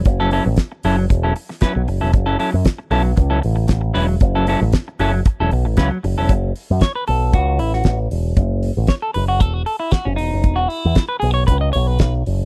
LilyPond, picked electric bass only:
\new Staff \with { instrumentName = "Picked electric bass" } { \clef bass \time 4/4 \key fis \dorian \tempo 4 = 116 fis,,8. a,,16 r8 fis,,8 e,,8 r8. b,,16 fis,,16 e,,16 | fis,,8 r16 fis,16 r8 b,,8 cis,8 a,,8 a,,8 e,,8 | fis,,8. a,,16 r8 fis,,8 r16 e,,16 b,,16 a,,16 cis,16 r16 fis,,16 e,,16 | fis,,8 r16 fis,16 r8 b,,8 cis,8 a,,8 a,,8 e,,8 |
fis,,8. a,,16 r8 fis,,8 e,,8 r8. fis,,16 e,,16 fis,,16 | e,,8 r16 e,16 r8 b,,8 cis,8 b,,8 b,,8 fis,,8 | }